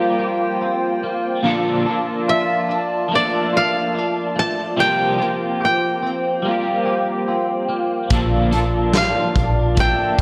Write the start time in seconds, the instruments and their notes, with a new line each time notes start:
Already playing: clean electric guitar F3 G3 A#3 C4 F4 G4, analog synth pad F4 C5 G5, koto C5
0.19 clean electric guitar G4
0.61 clean electric guitar C4
1.03 clean electric guitar A#3
1.42 clean electric guitar A#2 D3 F3 A#3 D4 A4, analog synth pad D5 A5
1.86 clean electric guitar A#3 D4 A4
1.90 clean electric guitar F3
2.28 clean electric guitar F4, koto E5
2.69 clean electric guitar D4
3.08 clean electric guitar F3 A3 A#3
3.15 clean electric guitar D4 A4, koto D5
3.53 clean electric guitar F4, koto F5
3.94 clean electric guitar D4
4.36 clean electric guitar A3, koto A5
4.77 clean electric guitar C3 F3 G3 A#3 F4 G4, analog synth pad F4 C5 G5, koto G5
5.18 clean electric guitar C4 F4 G4
5.22 clean electric guitar A#3
5.61 clean electric guitar G4
5.65 koto G5
6.02 clean electric guitar C4
6.42 clean electric guitar G3 A#3
6.48 clean electric guitar F4 G4
6.86 clean electric guitar G4
7.28 clean electric guitar C4
7.69 clean electric guitar A#3
8.10 fingered electric bass A#1, clean electric guitar A#2 D3 F3 A#3 D4 A4, analog synth pad D5 A5, kick, closed hi-hat
8.51 clean electric guitar A#3 D4 A4, closed hi-hat
8.56 clean electric guitar F3
8.93 clean electric guitar F4, koto F5, snare, closed hi-hat
9.35 fingered electric bass A#1, clean electric guitar D4, kick, closed hi-hat
9.75 clean electric guitar F3 A3 A#3, kick, closed hi-hat
9.80 clean electric guitar D4 A4, koto G5